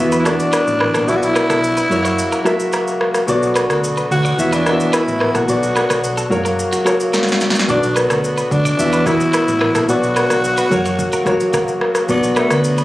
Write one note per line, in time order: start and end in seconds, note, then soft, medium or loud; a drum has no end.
0.00 0.39 E2 loud
0.00 0.20 E3 medium
0.00 1.07 E3 medium
0.00 4.34 F#3 medium
0.00 0.16 B3 medium
0.00 0.21 B3 medium
0.00 1.88 B3 medium
0.00 0.21 F#4 medium
0.00 3.24 F#4 medium
0.00 0.22 E5 medium
0.12 0.20 B4 medium
0.12 shaker medium
0.20 0.28 E4 medium
0.24 0.94 E3 medium
0.24 0.94 B3 medium
0.24 1.11 D4 loud
0.24 0.95 F#4 medium
0.24 0.33 A4 medium
0.24 0.95 D5 medium
0.24 cross-stick medium
0.24 shaker soft
0.40 shaker medium
0.53 0.61 B4 medium
0.53 cross-stick medium
0.53 shaker medium
0.67 0.88 A1 medium
0.67 shaker medium
0.80 0.88 B4 medium
0.80 cross-stick medium
0.94 1.05 A#1 medium
0.94 1.02 A4 medium
0.94 cross-stick medium
0.94 shaker medium
1.07 1.39 B1 loud
1.07 1.90 B2 medium
1.07 1.90 D3 medium
1.07 1.90 B3 medium
1.07 1.18 E4 loud
1.07 1.89 F#4 medium
1.07 1.91 D5 medium
1.07 shaker medium
1.16 1.25 F#4 medium
1.23 3.01 E4 loud
1.23 shaker medium
1.36 1.44 B4 medium
1.36 cross-stick medium
1.36 shaker medium
1.50 1.80 B1 medium
1.50 1.57 A4 medium
1.50 cross-stick loud
1.50 shaker medium
1.64 shaker medium
1.77 1.85 B4 medium
1.77 shaker medium
1.89 2.22 F#2 loud
1.89 3.27 C#3 medium
1.89 2.36 F#3 medium
1.89 3.27 A#3 medium
1.89 2.36 F#4 medium
1.89 2.37 A#4 medium
1.89 2.37 C#5 medium
1.89 shaker soft
2.05 2.12 C#5 medium
2.05 shaker medium
2.19 shaker medium
2.32 2.40 A#4 medium
2.32 shaker medium
2.44 3.14 F#3 medium
2.44 3.14 F#4 medium
2.44 2.54 A4 medium
2.44 3.15 A#4 medium
2.44 3.15 E5 loud
2.44 cross-stick medium
2.44 shaker soft
2.60 shaker medium
2.73 2.89 A#4 medium
2.73 cross-stick medium
2.73 shaker medium
2.88 shaker medium
3.01 cross-stick medium
3.14 cross-stick medium
3.14 shaker soft
3.27 3.70 B1 loud
3.27 4.19 B2 medium
3.27 4.37 D3 medium
3.27 4.19 B3 medium
3.27 4.37 B3 medium
3.27 9.85 F#4 medium
3.27 4.20 F#4 medium
3.27 4.20 D5 medium
3.27 shaker medium
3.43 shaker medium
3.56 3.70 B4 medium
3.56 cross-stick medium
3.56 shaker medium
3.70 4.00 D2 medium
3.70 3.77 A4 medium
3.70 cross-stick loud
3.70 shaker medium
3.84 shaker medium
3.97 4.05 B4 medium
3.97 shaker medium
4.11 4.31 D2 medium
4.11 4.55 F#4 loud
4.11 shaker soft
4.25 4.32 D5 medium
4.25 shaker medium
4.37 4.79 E2 loud
4.37 4.61 E3 medium
4.37 5.47 E3 medium
4.37 5.47 F#3 medium
4.37 4.61 B3 medium
4.37 6.29 B3 medium
4.37 4.61 F#4 medium
4.37 4.62 E5 medium
4.37 shaker medium
4.53 4.96 D4 loud
4.53 4.66 B4 medium
4.53 shaker medium
4.65 5.34 E3 medium
4.65 5.34 B3 medium
4.65 5.35 F#4 medium
4.65 4.74 A4 medium
4.65 4.73 D#5 medium
4.65 cross-stick medium
4.65 shaker soft
4.73 5.39 E5 medium
4.80 shaker medium
4.93 5.36 E4 loud
4.93 5.01 B4 medium
4.93 cross-stick medium
4.93 shaker medium
5.08 5.28 A1 medium
5.08 shaker medium
5.20 5.29 B4 medium
5.20 cross-stick medium
5.35 5.45 A#1 medium
5.35 6.42 F#4 loud
5.35 5.42 A4 medium
5.35 cross-stick medium
5.35 shaker soft
5.47 5.79 B1 loud
5.47 6.30 B2 medium
5.47 6.30 D3 medium
5.47 6.30 F#3 medium
5.47 6.31 B3 medium
5.47 6.29 F#4 medium
5.47 6.31 D5 medium
5.47 shaker medium
5.63 shaker medium
5.76 5.84 B4 medium
5.76 cross-stick medium
5.76 shaker medium
5.90 6.20 B1 medium
5.90 5.98 B4 medium
5.90 cross-stick medium
5.90 shaker medium
6.04 shaker medium
6.17 6.25 A4 medium
6.17 shaker medium
6.30 6.62 F#2 loud
6.30 7.67 C#3 medium
6.30 6.76 F#3 medium
6.30 7.67 F#3 medium
6.30 7.67 A#3 medium
6.30 6.77 F#4 medium
6.30 6.77 A#4 medium
6.30 6.78 C#5 loud
6.30 shaker soft
6.45 6.53 A#4 medium
6.45 shaker medium
6.59 shaker medium
6.73 6.80 F#4 medium
6.73 shaker medium
6.85 7.54 F#3 medium
6.85 7.55 F#4 medium
6.85 6.94 A4 medium
6.85 7.55 A#4 medium
6.85 7.55 C#5 loud
6.85 cross-stick medium
6.85 shaker medium
7.00 shaker medium
7.13 7.29 A#4 medium
7.13 snare medium
7.13 shaker medium
7.23 snare medium
7.28 snare medium
7.28 shaker medium
7.41 snare medium
7.41 shaker soft
7.50 snare medium
7.55 shaker medium
7.59 snare medium
7.67 8.10 B1 loud
7.67 8.59 B2 medium
7.67 8.78 D3 medium
7.67 12.84 F#3 medium
7.67 8.60 B3 medium
7.67 9.87 B3 medium
7.67 7.99 D4 medium
7.67 8.60 F#4 medium
7.67 8.61 D5 medium
7.67 kick loud
7.67 shaker medium
7.83 shaker medium
7.96 8.53 B3 medium
7.96 8.04 B4 medium
7.96 cross-stick medium
7.96 shaker medium
8.10 8.41 D2 medium
8.10 8.18 A4 medium
8.10 cross-stick loud
8.10 shaker soft
8.24 shaker medium
8.38 8.45 B4 medium
8.38 shaker medium
8.51 8.72 D2 medium
8.51 9.08 D4 medium
8.51 kick medium
8.51 shaker soft
8.65 8.73 D5 medium
8.65 shaker medium
8.77 9.20 E2 loud
8.77 9.01 E3 medium
8.77 9.88 E3 medium
8.77 9.01 B3 medium
8.77 9.02 F#4 medium
8.77 9.02 E5 medium
8.77 shaker medium
8.93 9.06 B4 medium
8.93 shaker medium
9.05 9.74 E3 medium
9.05 9.75 B3 medium
9.05 9.89 E4 loud
9.05 9.75 F#4 medium
9.05 9.14 A4 medium
9.05 9.76 B4 medium
9.05 kick medium
9.05 cross-stick medium
9.05 shaker soft
9.20 shaker medium
9.33 9.42 B4 medium
9.33 cross-stick medium
9.33 shaker medium
9.48 9.68 A1 medium
9.48 shaker medium
9.61 9.69 B4 medium
9.61 cross-stick medium
9.75 9.85 A#1 medium
9.75 9.83 A4 medium
9.75 cross-stick medium
9.75 shaker medium
9.88 10.20 B1 loud
9.88 10.71 B2 medium
9.88 10.70 D3 medium
9.88 10.70 B3 medium
9.88 10.71 B3 medium
9.88 12.84 F#4 medium
9.88 10.69 F#4 medium
9.88 11.78 F#4 loud
9.88 10.72 D5 medium
9.88 shaker medium
10.03 shaker medium
10.16 10.30 B4 medium
10.16 cross-stick medium
10.16 shaker medium
10.30 10.61 B1 medium
10.30 10.38 A4 medium
10.30 cross-stick medium
10.30 shaker medium
10.44 shaker medium
10.58 10.65 B4 medium
10.58 shaker medium
10.70 11.03 F#2 loud
10.70 12.08 C#3 medium
10.70 11.17 F#3 medium
10.70 12.08 A#3 medium
10.70 11.17 F#4 medium
10.70 11.17 A#4 medium
10.70 11.18 C#5 loud
10.70 kick medium
10.70 shaker soft
10.85 10.93 C#5 medium
10.85 shaker medium
10.99 kick medium
10.99 shaker medium
11.13 11.27 A#4 medium
11.13 shaker medium
11.25 11.95 F#3 medium
11.25 11.95 F#4 medium
11.25 11.35 A4 medium
11.25 11.95 A#4 medium
11.25 11.96 C#5 loud
11.25 kick medium
11.25 cross-stick medium
11.25 shaker soft
11.40 shaker medium
11.53 11.70 A#4 medium
11.53 kick medium
11.53 cross-stick medium
11.53 shaker medium
11.68 shaker medium
11.81 cross-stick medium
11.95 cross-stick medium
11.95 shaker medium
12.08 12.40 B1 loud
12.08 12.84 B2 medium
12.08 12.84 D3 medium
12.08 12.84 B3 medium
12.08 12.39 B3 medium
12.08 12.84 F#4 medium
12.08 12.84 D5 medium
12.08 kick loud
12.08 shaker medium
12.23 shaker medium
12.36 12.53 A3 medium
12.36 12.51 B4 medium
12.36 cross-stick medium
12.36 shaker medium
12.50 12.81 D2 medium
12.50 12.84 B3 loud
12.50 12.58 A4 medium
12.50 cross-stick loud
12.50 shaker medium
12.64 shaker medium
12.78 12.84 B4 medium
12.78 shaker medium